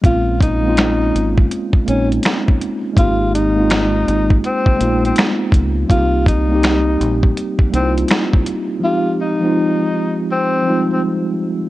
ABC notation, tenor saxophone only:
X:1
M:4/4
L:1/16
Q:"Swing 16ths" 1/4=82
K:Bbdor
V:1 name="Tenor saxophone"
F2 E6 z2 D z4 z | F2 E6 C3 C z4 | F2 E6 z2 C z4 z | F2 E6 C3 C z4 |]